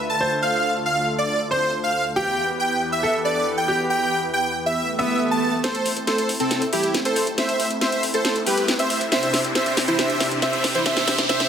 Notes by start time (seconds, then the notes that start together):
Already playing: D2 D3 A3 F4 A4 B4
0.10 A5
0.21 C5
0.42 F5
0.86 F5
1.18 D5
1.51 C5
1.84 F5
2.16 E2 E3 B3 G4 B4 G5
2.60 G5
2.92 E5
3.03 A4
3.25 D5
3.57 G5
3.68 G4
3.90 G5
4.33 G5
4.66 E5
4.77 swell
4.99 B3 E5
5.31 A5
5.64 A3 C4 E4 A4 C5, snare, closed hi-hat, riser
5.75 A1, closed hi-hat
5.86 A1, open hi-hat
5.97 A1, closed hi-hat
6.07 A4 C5, snare, closed hi-hat
6.18 A1, closed hi-hat
6.29 A1, open hi-hat
6.40 A1 C4 A4, closed hi-hat
6.51 snare, closed hi-hat
6.62 A2, closed hi-hat
6.72 A1 E4 G4, open hi-hat
6.83 A1, closed hi-hat
6.94 snare, closed hi-hat
7.05 A1 A4 C5, closed hi-hat
7.16 G1, open hi-hat
7.27 A1, closed hi-hat
7.38 C5 E5, snare, closed hi-hat
7.49 A1, closed hi-hat
7.60 A1, open hi-hat
7.71 A1, closed hi-hat
7.81 C5 E5, snare, closed hi-hat
7.92 A1, closed hi-hat
8.03 A1, open hi-hat
8.14 A1 A4 C5, closed hi-hat
8.25 snare, closed hi-hat
8.36 A2, closed hi-hat
8.46 A1 G4 B4, open hi-hat
8.57 A1, closed hi-hat
8.68 snare, closed hi-hat
8.79 A1 C5 E5, closed hi-hat
8.90 G1, open hi-hat
9.01 A1, closed hi-hat
9.12 C3 D4 G4 C5 E5, snare, closed hi-hat
9.23 C2, closed hi-hat
9.33 C2, snare, open hi-hat
9.44 C2, closed hi-hat
9.55 C5 E5, snare, closed hi-hat
9.66 C2, closed hi-hat
9.77 C2, snare, open hi-hat
9.88 C2 E4 C5, closed hi-hat
9.99 C5 E5, snare, closed hi-hat
10.09 G1, closed hi-hat
10.20 C2, snare, open hi-hat
10.31 C2, closed hi-hat
10.42 C5 E5, snare, closed hi-hat
10.53 C2, closed hi-hat
10.64 snare, open hi-hat
10.75 C2 E4 C5, closed hi-hat
10.86 C5 E5, snare, closed hi-hat
10.96 C2, snare, closed hi-hat
11.07 C2, snare, open hi-hat
11.18 C2, snare, closed hi-hat
11.29 C5 E5, snare, closed hi-hat
11.40 C2, snare, closed hi-hat